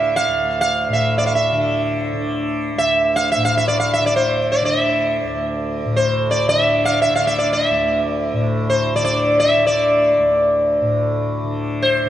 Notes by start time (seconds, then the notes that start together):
Already playing: D2 A2 D3 E5
0.16 F5
0.28 D2
0.61 F5
0.89 A2
0.93 E5
1.18 D5
1.26 F5
1.35 E5
1.52 D3
2.13 D3
2.75 D2 E5
3.16 F5
3.32 E5
3.36 A2
3.45 F5
3.57 E5
3.68 D5
3.80 F5
3.93 E5
3.99 D3
4.06 D5
4.16 C5
4.52 D5
4.61 D3 E5
5.24 D2
5.85 A2
5.96 C5
6.31 D5
6.48 D3 E5
6.85 F5
7.02 E5
7.09 D3
7.15 F5
7.27 E5
7.38 D5
7.53 E5
7.71 D2
8.33 A2
8.70 C5
8.95 D3 D5
9.05 D5
9.40 E5
9.56 D3
9.67 D5
10.19 D2
10.81 A2
11.43 D3
11.82 C5
12.05 D3